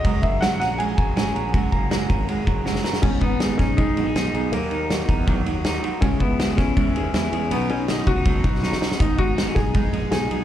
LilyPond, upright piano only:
\new Staff \with { instrumentName = "Upright piano" } { \time 4/4 \key gis \minor \tempo 4 = 161 dis''8 e''8 fis''8 fis''8 gis''2~ | gis''2. r4 | cis'8 b4 cis'8 dis'2 | ais4. r2 r8 |
cis'8 b4 cis'2~ cis'8 | b8 cis'8 dis'8 fis'2 r8 | dis'8 fis'4 gis'4. gis'4 | }